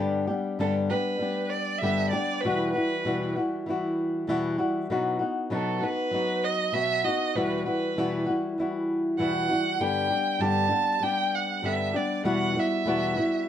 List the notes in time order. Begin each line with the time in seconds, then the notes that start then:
Already playing: G2 D3 G3 B3 D4 G4
0.27 G3 B3 D4 G4
0.59 G2 D3 G3 B3 D4 G4 A4
0.89 B3 D4 G4 B4
0.94 G3
1.19 G3 B3 D4 G4
1.50 D5
1.78 G2 D3 E5
1.83 G3 B3 D4 G4
2.11 D4 G4 D5
2.15 G3 B3
2.40 E2 B2 B4
2.45 E3 G3 E4 F#4
2.72 E4 F#4 B4
2.76 E3 G3
3.05 E2 B2 E3 G3 E4 F#4
3.36 E3 G3 E4 F#4
3.66 E3 G3 E4
3.70 F#4
4.27 E2 B2 E3 G3 E4 F#4
4.58 E3 G3 E4 F#4
4.90 B2 F#3 B3 D#4 F#4
5.19 B3 D#4 F#4
5.50 B2 F#3 B3 D#4 F#4 A4
5.81 B3 D#4 F#4 B4
6.11 F#3 B3 D#4 F#4
6.44 D#5
6.72 B2 F#3 B3 F#4 E5
7.04 D#4 F#4 D#5
7.08 B3
7.35 E2 B2 E3 G3 E4 F#4 B4
7.65 E3 G3 E4 F#4 B4
7.96 E2 B2 E3 G3 E4 F#4
8.26 G3 E4 F#4
8.31 E3
8.58 E3 G3 E4 F#4
9.18 E2 B2 E3 G3 E4 F#4 F#5
9.49 E3 G3 E4 F#4
9.80 G2 D3 G3 B3 D4 G4 G5
10.10 G3 B3 D4 G4
10.39 G2 D3 G3 B3 D4 G4 A5
10.69 G3 B3 D4 G4
11.00 G3 B3 D4 G4 G5
11.35 F#5
11.63 G2 D3 G3 B3 D4 G4 E5
11.94 G3 B3 D4 G4 D5
12.24 E2 B2 G3 B3 E4 F#4 F#5
12.54 G3 B3 E4 F#4
12.59 E5
12.86 E2 B2 G3 B3 E4 F#4
13.16 G3 B3 E4 F#4